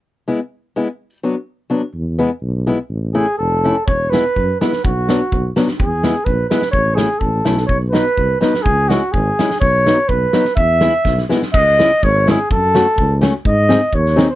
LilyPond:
<<
  \new Staff \with { instrumentName = "Flugelhorn" } { \time 2/4 \key e \major \tempo 4 = 126 r2 | r2 | r2 | r8 gis'8 a'4 |
cis''8 b'4 b'8 | fis'4. r8 | gis'4 b'8 b'8 | cis''8 gis'8 a'4 |
cis''8 b'4 b'8 | gis'8 fis'8 gis'4 | cis''4 b'4 | e''4. r8 |
\key cis \minor dis''4 cis''8 gis'8 | a'4. r8 | dis''4 cis''8. bis'16 | }
  \new Staff \with { instrumentName = "Steel-string acoustic guitar" } { \time 2/4 \key e \major r8 <gis b e'>8 r8 <gis b e'>8 | r8 <fis b d'>8 r8 <fis b d'>8 | r8 <gis b e'>8 r8 <gis b e'>8 | r8 <a cis' e'>8 r8 <a cis' e'>8 |
r8 <gis b e'>8 r8 <gis b e'>8 | r8 <fis b d'>8 r8 <fis b d'>8 | r8 <gis b e'>8 r8 <gis b e'>8 | r8 <a cis' e'>8 r8 <a cis' e'>8 |
r8 <fis b dis'>8 r8 <fis b dis'>8 | r8 <gis cis' e'>8 r8 <gis cis' e'>8 | r8 <fis b dis'>8 r8 <fis b dis'>8 | r8 <gis b e'>8 r8 <gis b e'>8 |
\key cis \minor r8 <gis cis' e'>8 r8 <gis cis' e'>8 | r8 <a cis' fis'>8 r8 <a cis' fis'>8 | r8 <bis dis' gis'>8 r8 <bis dis' gis'>8 | }
  \new Staff \with { instrumentName = "Tuba" } { \clef bass \time 2/4 \key e \major r2 | r2 | e,4 b,,4 | a,,4 f,,4 |
e,,4 fis,8 r8 | b,,4 b,,8 r8 | e,4 ais,,8 r8 | a,,4 a,,8 b,,8 |
b,,4 c,8 r8 | cis,4 gis,,8 r8 | b,,4 b,,8 r8 | e,4 b,,8 r8 |
\key cis \minor cis,4 gis,,4 | fis,4 cis,4 | gis,4 dis,4 | }
  \new DrumStaff \with { instrumentName = "Drums" } \drummode { \time 2/4 r4 r4 | r4 r4 | r4 r4 | r4 r4 |
bd8 sn8 bd8 sn16 sn16 | bd8 sn8 bd8 sn16 sn16 | bd8 sn8 bd8 sn16 sn16 | bd8 sn8 bd8 sn16 sn16 |
bd8 sn8 bd8 sn16 sn16 | bd8 sn8 bd8 sn16 sn16 | bd8 sn8 bd8 sn16 sn16 | bd8 sn8 <bd sn>16 sn16 sn16 sn16 |
<cymc bd>8 sn8 bd8 sn8 | bd8 sn8 bd8 sn8 | bd8 sn8 bd16 sn16 sn8 | }
>>